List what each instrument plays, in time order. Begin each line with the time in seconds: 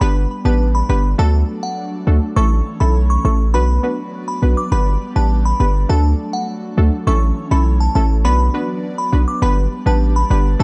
0.01 808-style bass G1, analog synth pad G3 B3 D4, synth pluck B3 D4 G4 B4, synth bell B5
0.45 808-style bass A1, synth pluck B3 D4 G4 B4, synth bell A5
0.75 synth bell B5
0.89 808-style bass G1, synth pluck B3 D4 G4 B4, synth bell B5
1.18 808-style bass D2, analog synth pad F#3 A3 D4, synth pluck A3 D4 F#4 A4, synth bell A5
1.63 synth bell F#5
2.07 808-style bass D2, synth pluck A3 D4 F#4 A4
2.36 808-style bass A1, analog synth pad E3 C#4, synth pluck A3 C#4 E4 A4, synth bell C#6
2.80 808-style bass B1, synth pluck A3 C#4 E4 A4, synth bell B5
3.10 synth bell C#6
3.25 808-style bass A1, synth pluck A3 C#4 E4 A4, synth bell C#6
3.54 808-style bass B1, analog synth pad F#3 B3 D4, synth pluck B3 D4 F#4 B4, synth bell B5
3.83 synth pluck B3 D4 F#4 B4
4.28 synth bell B5
4.42 808-style bass B1, synth pluck B3 D4 F#4 B4
4.57 synth bell D6
4.72 808-style bass G1, analog synth pad G3, synth pluck B3 D4 G4 B4, synth bell B5
5.16 808-style bass A1, synth pluck B3 D4 G4 B4, synth bell A5
5.45 synth bell B5
5.60 808-style bass G1, synth pluck B3 D4 G4 B4, synth bell B5
5.89 808-style bass D2, analog synth pad F#3 A3, synth pluck A3 D4 F#4 A4, synth bell A5
6.33 synth bell F#5
6.77 808-style bass D2, synth pluck A3 D4 F#4 A4
7.07 808-style bass A1, analog synth pad E3 C#4, synth pluck A3 C#4 E4 A4, synth bell C#6
7.51 808-style bass B1, synth pluck A3 C#4 E4 A4, synth bell B5
7.80 synth bell A5
7.95 808-style bass A1, synth pluck A3 C#4 E4 A4, synth bell A5
8.25 808-style bass B1, analog synth pad F#3 B3 D4, synth pluck B3 D4 F#4 B4, synth bell B5
8.54 synth pluck B3 D4 F#4 B4
8.98 synth bell B5
9.12 808-style bass B1, synth pluck B3 D4 F#4 B4
9.28 synth bell D6
9.42 808-style bass G1, analog synth pad G3 B3 D4, synth pluck B3 D4 G4 B4, synth bell B5
9.86 808-style bass A1, synth pluck B3 D4 G4 B4, synth bell A5
10.16 synth bell B5
10.30 808-style bass G1, synth pluck B3 D4 G4 B4, synth bell B5
10.59 808-style bass D2, analog synth pad F#3 A3, synth pluck A3 D4 F#4 A4, synth bell A5